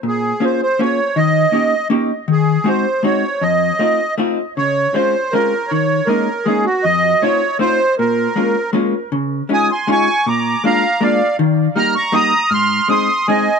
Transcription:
<<
  \new Staff \with { instrumentName = "Accordion" } { \time 3/4 \key bes \minor \tempo 4 = 159 aes'4 c''8 c''8 des''4 | ees''2 r4 | aes'4 c''4 des''4 | ees''2 r4 |
des''4 c''4 bes'4 | des''4 bes'4 aes'8 ges'8 | ees''4 des''4 c''4 | bes'2 r4 |
\key des \major r4 <aes'' ees'''>8 <aes'' c'''>8 <aes'' des'''>4 | <bes'' d'''>4 <f'' bes''>4 <d'' f''>4 | r4 <bes'' f'''>8 <bes'' des'''>8 <bes'' ees'''>4 | <c''' f'''>4 <c''' ees'''>4 <ees'' aes''>4 | }
  \new Staff \with { instrumentName = "Hollow-body jazz guitar" } { \time 3/4 \key bes \minor bes,4 <bes des' f' aes'>8 r8 <bes des' f' aes'>8 r8 | ees4 <bes des' ees' g'>8 r8 <bes des' ees' g'>8 r8 | ees4 <aes c' ees' ges'>8 r8 <aes c' ees' ges'>8 r8 | f,4 <a c' ees' f'>8 r8 <a c' ees' f'>8 r8 |
des4 <aes c' des' f'>8 r8 <aes c' des' f'>8 r8 | ees4 <aes bes des' ees'>8 r8 <aes bes des' ees'>8 r8 | f,4 <a c' ees' f'>8 r8 <a c' ees' f'>8 r8 | bes,4 <aes bes des' f'>8 r8 <aes bes des' f'>8 r8 |
\key des \major des4 <aes des' ees' f'>8 r8 <aes des' ees' f'>8 r8 | bes,4 <aes bes d' f'>8 r8 <aes bes d' f'>8 r8 | ees4 <g bes ees' g'>8 r8 <g bes ees' g'>8 r8 | aes,4 <aes c' ees' aes'>8 r8 <aes c' ees' aes'>8 r8 | }
>>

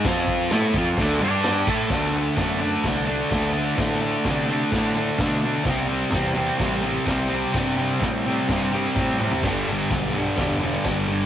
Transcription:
<<
  \new Staff \with { instrumentName = "Distorted electric guitar" } { \clef bass \time 4/4 \key c \lydian \tempo 4 = 128 <f c' f'>4 <a e' a'>8 <f c' f'>8 <d a d'>8 <g d' g'>4 <a e' a'>8 | <d a d'>8 <a d'>8 <d a d'>8 <d a d'>8 <d a d'>8 <d a d'>8 <d a d'>8 <a d'>8 | <d a d'>8 <a d'>8 <d a d'>8 <d a d'>8 <d a d'>8 <d a d'>8 <d a d'>8 <a d'>8 | <c g c'>8 <g c'>8 <c g c'>8 <c g c'>8 <c g c'>8 <c g c'>8 <c g c'>8 <g c'>8 |
<c g c'>8 <g c'>8 <c g c'>8 <c g c'>8 <c g c'>8 <c g c'>8 <c g c'>8 <g c'>8 | <g, d g>8 <d g>8 <g, d g>8 <g, d g>8 <g, d g>8 <g, d g>8 <g, d g>8 <d g>8 | }
  \new Staff \with { instrumentName = "Fingered electric bass" } { \clef bass \time 4/4 \key c \lydian f,4 a,8 f,8 d,8 g,4 a,8 | d,4 fis,4 c,4 d,4 | a,4 c4 a,4 b,4 | c,4 e,4 a,,4 c,4 |
g,4 a,4 g,4 a,4 | g,,4 b,,4 e,,4 g,,4 | }
  \new DrumStaff \with { instrumentName = "Drums" } \drummode { \time 4/4 <cymc bd sn>8 bd8 <cymc sn>8 bd8 <cymc bd sn>4 <cymc sn>8 <cymc bd>8 | <hho bd sn>4 <hho bd sn>4 <hho bd sn>4 <hho bd sn>4 | <hho bd sn>4 <hho bd sn>4 <hho bd sn>4 <hho bd sn>4 | <hho bd sn>4 <hho bd sn>4 <hho bd sn>4 <hho bd sn>4 |
<hho bd sn>4 <hho bd sn>4 <hho bd sn>4 <bd sn>8 toml16 tomfh16 | <cymc hho bd sn>4 <hho bd sn>4 <hho bd sn>4 <hho bd sn>4 | }
>>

